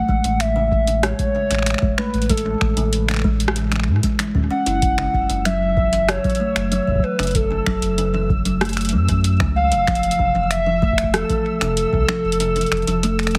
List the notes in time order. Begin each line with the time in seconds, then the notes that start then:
Already playing: F#5
0.09 A1 G#3, kick
0.24 A1 E3, closed hi-hat
0.40 E5, finger snap, closed hi-hat
0.56 C#3
0.72 kick
0.87 C#3, closed hi-hat
1.03 G#3 C#5, cross-stick, closed hi-hat
1.19 kick, closed hi-hat
1.35 C#3
1.51 A1 E3, finger snap, closed hi-hat
1.55 finger snap
1.59 finger snap
1.62 finger snap
1.66 finger snap, closed hi-hat
1.70 finger snap
1.74 finger snap
1.78 E1 G#3, finger snap, kick
1.98 A3 B4, finger snap
2.14 A1, closed hi-hat
2.22 closed hi-hat
2.30 G#3 A4, kick, closed hi-hat
2.37 closed hi-hat
2.45 E3
2.61 A1, finger snap, kick
2.77 A1 C#3, closed hi-hat
2.93 closed hi-hat
3.08 C#3, finger snap, closed hi-hat
3.11 finger snap
3.14 finger snap
3.16 finger snap
3.19 finger snap
3.22 G#3, finger snap, kick
3.40 closed hi-hat
3.48 cross-stick
3.56 C#3, closed hi-hat
3.72 E3, finger snap, closed hi-hat
3.76 finger snap
3.80 finger snap
3.83 A2, finger snap
4.03 G#3, kick, closed hi-hat
4.19 E3, finger snap, closed hi-hat
4.35 C#4, kick
4.37 kick
4.40 kick
4.43 kick
4.45 kick
4.48 C#4 F#5, kick
4.66 F#1 E4, closed hi-hat
4.82 E6, kick, closed hi-hat
4.98 C#3, finger snap
5.14 F#1, kick
5.30 F#1 C#3, closed hi-hat
5.45 F#3 E5, finger snap, closed hi-hat
5.77 C#3, kick
5.93 E3, closed hi-hat
6.09 C#5, finger snap, cross-stick, closed hi-hat
6.24 F#3, kick, closed hi-hat
6.30 closed hi-hat
6.35 closed hi-hat
6.40 A3
6.56 F#1, finger snap, closed hi-hat
6.72 F#3, closed hi-hat
6.87 E1 E3, kick
6.91 kick
6.95 kick
6.99 kick
7.03 B4
7.19 F#1 C#3, finger snap, closed hi-hat
7.23 closed hi-hat
7.27 closed hi-hat
7.31 kick, closed hi-hat
7.35 A4, closed hi-hat
7.51 C#3
7.66 F#1 F#3, finger snap, kick
7.82 F#1, closed hi-hat
7.98 C#3, closed hi-hat
8.14 E3
8.30 kick
8.45 F#3, closed hi-hat
8.61 A3, cross-stick, closed hi-hat
8.65 closed hi-hat
8.69 closed hi-hat
8.73 finger snap, closed hi-hat
8.77 closed hi-hat
8.81 closed hi-hat
8.85 closed hi-hat
8.89 F#2 F#3, closed hi-hat
9.09 E3, kick, closed hi-hat
9.24 closed hi-hat
9.40 C#2 C#3, finger snap, kick
9.56 F5
9.72 F1 C#3, closed hi-hat
9.87 F3, finger snap, kick, closed hi-hat
9.95 closed hi-hat
10.03 closed hi-hat
10.11 closed hi-hat
10.19 F1 C3, kick
10.35 F1 E3
10.51 E5, finger snap, closed hi-hat
10.66 F3
10.82 A3, kick
10.93 kick
10.98 finger snap, closed hi-hat
11.03 kick
11.14 F3 A4, cross-stick, closed hi-hat
11.30 E3, kick, closed hi-hat
11.61 F1 C3, finger snap, closed hi-hat
11.77 closed hi-hat
11.93 C2 C3, kick
12.09 F3, finger snap
12.24 F1
12.32 closed hi-hat
12.40 C3, closed hi-hat
12.56 E3, closed hi-hat
12.61 closed hi-hat
12.66 closed hi-hat
12.72 F1, finger snap, closed hi-hat
12.77 closed hi-hat
12.82 closed hi-hat
12.87 F1 F3, closed hi-hat
13.03 A3, closed hi-hat
13.19 finger snap, closed hi-hat
13.23 finger snap, closed hi-hat
13.27 closed hi-hat
13.31 finger snap, closed hi-hat
13.35 F3, closed hi-hat